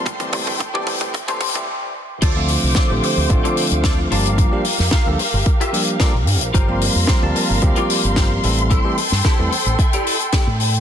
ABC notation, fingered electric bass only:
X:1
M:4/4
L:1/16
Q:1/4=111
K:Dm
V:1 name="Fingered electric bass" clef=bass
z3 G,, z E,, z A,,, z8 | D,,2 z C,, z A,,, z D,, A,,, z2 D,,2 z G,,,2 | z3 F,, z D,, z G,,, z4 z B,,, G,, B,,, | G,,,2 z F,, z D,, z G,,, D,, z2 G,,,2 z A,,,2 |
z3 G,, z E,, z A,,, z4 z A,,2 z |]